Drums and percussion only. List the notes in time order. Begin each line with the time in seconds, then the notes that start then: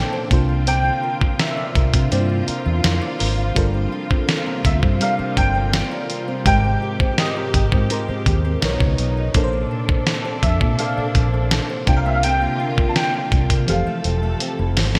0.31 kick, closed hi-hat
0.67 closed hi-hat
1.21 kick
1.39 snare, closed hi-hat
1.75 kick, closed hi-hat
1.94 kick, closed hi-hat
2.12 closed hi-hat
2.48 closed hi-hat
2.84 snare, closed hi-hat
3.20 open hi-hat
3.56 kick, closed hi-hat
4.11 kick
4.29 snare, closed hi-hat
4.65 kick, closed hi-hat
4.83 kick
5.01 closed hi-hat
5.37 kick, closed hi-hat
5.73 snare, closed hi-hat
6.10 closed hi-hat
6.46 kick, closed hi-hat
7.00 kick
7.18 snare, closed hi-hat
7.54 kick, closed hi-hat
7.72 kick
7.90 closed hi-hat
8.26 kick, closed hi-hat
8.62 snare, closed hi-hat
8.80 kick
8.98 closed hi-hat
9.34 kick, closed hi-hat
9.89 kick
10.07 snare, closed hi-hat
10.43 kick, closed hi-hat
10.61 kick
10.79 closed hi-hat
11.15 kick, closed hi-hat
11.51 snare, closed hi-hat
11.87 kick, closed hi-hat
12.23 closed hi-hat
12.78 kick
12.96 snare, closed hi-hat
13.32 kick, closed hi-hat
13.50 kick, closed hi-hat
13.68 closed hi-hat
14.04 closed hi-hat
14.40 closed hi-hat
14.77 snare, open hi-hat
14.95 snare